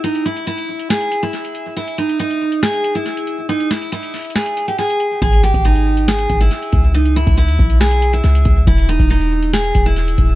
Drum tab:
HH |x-x-x-x-x-x---x-x-x-x-x-x-x-x---|x-x-x-x-x-x---x-x-x-x-x-x-x-x---|x-x-x-x-x-x-o-xxxxx-x-x-x-x-x---|x-x-x-x-x-x---x-x-x-x-x-x-x-x---|
SD |----------------o---------------|----------------o---------------|----o-----------o---------------|----------------o---------------|
BD |--------------------------------|--------------------------------|--------------------------------|o-----o-------------o-------o---|

HH |x-x-x-x-x-x---x-x-x-x-x-x-x-x---|x-x-x-x-x-x---x-x-x-x-x-x-x-x---|
SD |----------------o---------------|----------------o---------------|
BD |------o-----o---------------o---|o-----o-------------o-------o---|